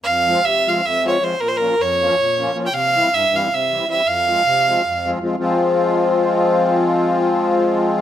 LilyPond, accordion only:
\new Staff \with { instrumentName = "Accordion" } { \clef bass \time 7/8 \key f \minor \tempo 4 = 157 << { r8 <f aes c' f'>8 r8 <f aes c' f'>8 r8 <f aes c' f'>8 <f aes c' f'>8 | r8 <f bes des' f'>8 r8 <f bes des' f'>8 r8 <f bes des' f'>8 <f bes des' f'>8 | r8 <e g c' e'>8 r8 <e g c' e'>8 r8 <e g c' e'>8 <e g c' e'>8 | r8 <f aes c' f'>8 r8 <f aes c' f'>8 r8 <f aes c' f'>8 <f aes c' f'>8 |
<f aes c' f'>2.~ <f aes c' f'>8~ | <f aes c' f'>2.~ <f aes c' f'>8 | } \\ { f,4 c4 f,4 r8 | bes,4 f,4 bes,4 r8 | c4 g,4 c4 r8 | f,4 c4 f,4 r8 |
r2. r8 | r2. r8 | } >> }